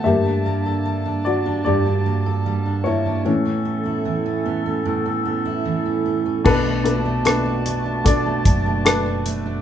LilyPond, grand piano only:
<<
  \new Staff \with { instrumentName = "Grand piano" } { \time 4/4 \key b \minor \tempo 4 = 75 <g' e''>4. <fis' d''>8 <g' d''>4. <e' cis''>8~ | <e' cis''>2. r4 | <d' a' b'>8 <d' a' b'>8 <d' a' b'>4 <d' a' d''>4 <d' a' b'>4 | }
  \new Staff \with { instrumentName = "Grand piano" } { \clef bass \time 4/4 \key b \minor <g, d bes>4. r2 r8 | <a, e cis'>8 r2. r8 | b,4. r2 r8 | }
>>